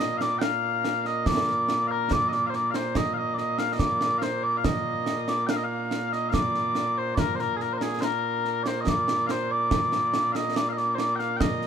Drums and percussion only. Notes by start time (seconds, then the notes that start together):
0.00 snare
0.21 snare
0.41 snare
0.84 snare
1.05 snare
1.26 concert bass drum, snare
1.48 snare
1.69 snare
2.11 concert bass drum, snare
2.32 snare
2.53 snare
2.74 snare
2.95 concert bass drum, snare
3.38 snare
3.59 snare
3.79 concert bass drum, snare
4.01 snare
4.22 snare
4.64 concert bass drum, snare
5.06 snare
5.28 snare
5.49 snare
5.91 snare
6.13 snare
6.34 concert bass drum, snare
6.55 snare
6.75 snare
7.17 concert bass drum, snare
7.39 snare
7.60 snare
7.81 snare
8.02 snare
8.45 snare
8.66 snare
8.87 concert bass drum, snare
9.08 snare
9.29 snare
9.71 concert bass drum, snare
9.92 snare
10.14 snare
10.35 snare
10.56 snare
10.78 snare
10.98 snare
11.19 snare
11.41 concert bass drum, snare
11.62 snare